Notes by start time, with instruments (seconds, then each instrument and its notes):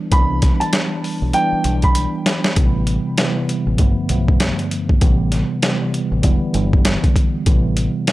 Already playing: tine electric piano E3 G3 B3 D4
0.11 fingered electric bass C2, tine electric piano E3 G3 B3 D4, upright piano B5, kick, closed hi-hat
0.42 kick, snare, closed hi-hat
0.60 upright piano A5, closed hi-hat
0.73 snare, closed hi-hat
1.04 open hi-hat
1.22 fingered electric bass B1
1.33 tine electric piano E3 G3 B3 D4, upright piano G5, closed hi-hat
1.53 muted fingered electric bass stroke
1.64 fingered electric bass B1, closed hi-hat
1.82 upright piano B5, kick, closed hi-hat
1.95 closed hi-hat
2.26 snare, closed hi-hat
2.44 snare
2.56 fingered electric bass A1, tine electric piano C3 E3 G3 B3, kick, closed hi-hat
2.87 closed hi-hat
3.17 tine electric piano C3 E3 G3 B3, snare, closed hi-hat
3.49 closed hi-hat
3.67 fingered electric bass A1
3.78 fingered electric bass G1, tine electric piano G2 D3 F3 A3 B3, kick, closed hi-hat
3.97 muted fingered electric bass stroke
4.09 fingered electric bass B1, tine electric piano G2 D3 F3 A3 B3, closed hi-hat
4.28 kick
4.40 snare, closed hi-hat
4.59 closed hi-hat
4.71 closed hi-hat
4.89 kick
5.00 fingered electric bass A1, tine electric piano C3 E3 G3 B3, kick, closed hi-hat
5.32 snare, closed hi-hat
5.62 tine electric piano C3 E3 G3 B3, snare, closed hi-hat
5.94 closed hi-hat
6.12 fingered electric bass A1
6.22 fingered electric bass E1, tine electric piano D3 E3 G3 B3, kick, closed hi-hat
6.42 muted fingered electric bass stroke
6.53 fingered electric bass G1, tine electric piano D3 E3 G3 B3, closed hi-hat
6.73 kick
6.85 snare, closed hi-hat
7.04 kick, closed hi-hat
7.16 kick, closed hi-hat
7.46 fingered electric bass A1, tine electric piano C3 E3 G3 B3, kick, closed hi-hat
7.77 closed hi-hat
8.07 tine electric piano C3 E3 G3, snare, closed hi-hat